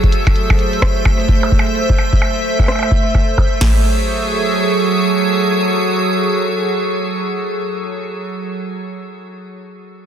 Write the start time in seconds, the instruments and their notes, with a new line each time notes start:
Already playing: ambient pad A3 A4 C5 E5
0.03 kick, closed hi-hat
0.12 closed hi-hat
0.27 kick, closed hi-hat, percussion blips
0.36 closed hi-hat
0.50 kick, closed hi-hat, percussion blips
0.59 closed hi-hat
0.73 closed hi-hat
0.82 kick, cross-stick, closed hi-hat, percussion blips
0.97 closed hi-hat
1.05 kick, closed hi-hat, percussion blips
1.20 closed hi-hat
1.29 kick, closed hi-hat
1.36 closed hi-hat
1.43 percussion blips
1.52 kick
1.59 percussion blips
1.66 closed hi-hat
1.75 closed hi-hat
1.90 kick, closed hi-hat
1.98 closed hi-hat, percussion blips
2.13 kick, closed hi-hat
2.22 closed hi-hat, percussion blips
2.36 closed hi-hat
2.45 closed hi-hat
2.59 kick, closed hi-hat, percussion blips
2.62 percussion blips
2.64 percussion blips
2.66 cross-stick, closed hi-hat, percussion blips
2.68 percussion blips
2.72 percussion blips
2.75 percussion blips
2.79 percussion blips
2.83 percussion blips
2.91 kick, closed hi-hat
3.06 closed hi-hat
3.12 kick, closed hi-hat
3.15 closed hi-hat, percussion blips
3.22 closed hi-hat
3.29 closed hi-hat
3.38 kick, closed hi-hat, percussion blips
3.52 closed hi-hat
3.61 ambient pad F#3 F#4 G#4 A4, kick, snare, crash